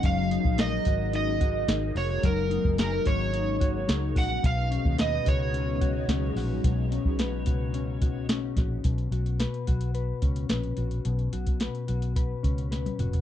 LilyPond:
<<
  \new Staff \with { instrumentName = "Electric slide guitar" } { \time 4/4 \key b \lydian \tempo 4 = 109 eis''4 dis''4 dis''4. cis''8 | ais'4 ais'8 cis''2 fis''8 | eis''4 dis''8 cis''2~ cis''8~ | cis''2. r4 |
r1 | r1 | }
  \new Staff \with { instrumentName = "Clean electric guitar" } { \time 4/4 \key b \lydian fis8 dis'8 ais'8 fis'8 dis'8 fis'8 dis'8 fis'8 | fis8 dis'8 gis'16 ais'16 fis'8 dis'8 fis'8 dis'8 fis'8 | b,8 cis'8 b'8 fis'8 cis'8 fis'8 cis'8 fis'8 | b,8 cis'8 b'8 fis'8 cis'8 fis'8 cis'8 fis'8 |
b,8 fis'8 b'8 fis'8 b'8 cis'8 b'8 fis'8 | b,8 fis'8 b'8 fis'8 b'8 cis'8 b'8 fis'8 | }
  \new Staff \with { instrumentName = "String machine" } { \clef bass \time 4/4 \key b \lydian <cis fis gis ais dis'>1~ | <cis fis gis ais dis'>1 | <cis fis gis b dis'>1~ | <cis fis gis b dis'>1 |
r1 | r1 | }
  \new Staff \with { instrumentName = "Fingered electric bass" } { \clef bass \time 4/4 \key b \lydian fis,,8. ais,,8. gis,,4. gis,,8 eis,,8 | fis,,8. fis,,8. gis,,4. cis,8 ais,,8 | b,,8. dis,8. cis,4. cis,8 ais,,8 | b,,8. b,,8. cis,4. b,,8 ais,,8 |
b,,8 b,,8. r16 b,,4 cis,8 ais,,8 ais,,8 | b,,8 b,,8. r16 b,,4 cis,4 eis,,8 | }
  \new DrumStaff \with { instrumentName = "Drums" } \drummode { \time 4/4 <hh bd>8 hh16 bd16 <hh sn>8 <hh bd>8 hh8 <hh bd>8 <hh sn>8 <hho sn>8 | <hh bd>8 hh16 bd16 <hh sn>8 <hh bd>8 hh8 <hh bd>8 <hh sn>8 <hho bd sn>8 | <hh bd>8 hh16 bd16 <hh sn>8 <hh bd>8 hh8 <hh bd>8 <hh sn>8 <hho sn>8 | <hh bd>8 hh16 bd16 <hh sn>8 <hh bd>8 hh8 <hh bd>8 <hh sn>8 <hh bd sn>8 |
<hh bd>16 hh16 hh16 hh16 <hh sn>16 hh16 <hh bd>16 hh16 hh8 <hh bd>16 hh16 <hh sn>16 hh16 hh16 hh16 | hh16 hh16 hh16 <hh bd>16 <hh sn>16 hh16 hh16 hh16 <hh bd>8 <hh bd>16 hh16 <hh sn>16 <hh tommh>16 <hh toml>16 <hh tomfh>16 | }
>>